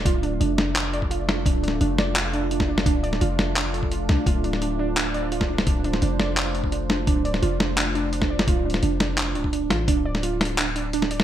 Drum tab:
HH |x---x---x-------x---x---x-------|x---x---x-------x---x---x-------|x---x---x-------x---x---x-------|x---x---x-------x---x---x-------|
CP |----------------x---------------|----------------x---------------|----------------x---------------|----------------x---------------|
SD |------------o---------------o---|-----o------o-------------o---o-|------o-----o---------------o---|------o-------------------o---o-|
BD |o---------------------o---------|o-------------------------o-----|o---------------------o---------|o-------------------------o-----|

HH |x---x---x-------x---x---x-------|x---x---x-------x---x---x-------|x----x--x---x---x---x---x---x---|x-------x---xx--x---x---x---x---|
CP |----------------x---------------|----------------x---------------|----------------x---------------|----------------x---------------|
SD |------o-----o---------------o---|------o-----o-------------o---o-|------o-----o---------------o---|------o-----o-------------o---o-|
BD |o---------------------o---------|o-------------------------o-----|o---------------------o---------|o-------------------------------|